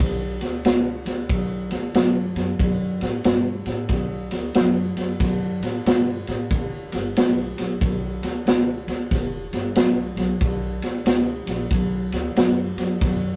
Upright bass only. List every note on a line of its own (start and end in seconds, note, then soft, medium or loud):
0.00 0.37 B1 medium
0.41 0.63 D2 medium
0.64 1.02 C#2 medium
1.05 1.27 D2 medium
1.29 1.67 B1 medium
1.70 1.92 D2 medium
1.94 2.31 F#2 medium
2.35 2.57 F#2 medium
2.59 2.97 F#2 medium
3.02 3.23 A2 medium
3.25 3.62 G2 medium
3.66 3.87 A2 medium
3.89 4.27 B1 medium
4.32 4.53 D2 medium
4.56 4.93 F#2 medium
4.96 5.18 F#2 medium
5.20 5.57 F#2 medium
5.60 5.82 A2 medium
5.86 6.23 G2 medium
6.28 6.49 A2 medium
6.51 6.88 E1 medium
6.93 7.14 G1 medium
7.17 7.53 B1 medium
7.58 7.79 B1 medium
7.81 8.18 B1 medium
8.22 8.44 D2 medium
8.45 8.83 C#2 medium
8.87 9.09 D2 medium
9.11 9.48 E1 medium
9.52 9.74 G1 medium
9.76 10.13 B1 medium
10.16 10.38 B1 medium
10.41 10.78 B1 medium
10.82 11.04 D2 medium
11.05 11.43 C#2 medium
11.46 11.68 A#1 medium
11.71 12.08 B1 loud
12.12 12.34 D2 medium
12.35 12.73 F#2 medium
12.76 12.99 F#2 medium
13.01 13.36 F#2 medium